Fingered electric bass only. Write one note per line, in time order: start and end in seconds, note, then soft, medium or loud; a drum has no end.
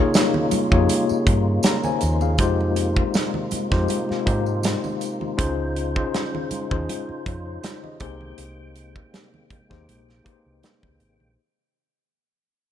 0.52 muted fingered electric bass stroke soft
0.72 0.86 F2 medium
1.11 muted fingered electric bass stroke soft
1.27 1.57 G2 loud
2.03 2.39 D#2 medium
2.39 3.00 F2 loud
3.52 muted fingered electric bass stroke soft
3.72 3.86 F2 medium
4.11 muted fingered electric bass stroke soft
4.27 4.74 G#2 medium
5.39 6.00 C#2 loud
6.51 muted fingered electric bass stroke soft
6.71 6.85 D#2 medium
7.09 muted fingered electric bass stroke soft
7.26 7.57 F2 medium
8.01 8.31 C2 medium
8.38 8.99 C2 medium
9.51 muted fingered electric bass stroke soft
9.71 9.85 D#2 medium
9.89 10.19 A#1 medium
10.46 10.60 C2 medium
10.84 10.98 C#2 medium
11.00 11.17 G#1 medium
11.21 11.35 A#1 medium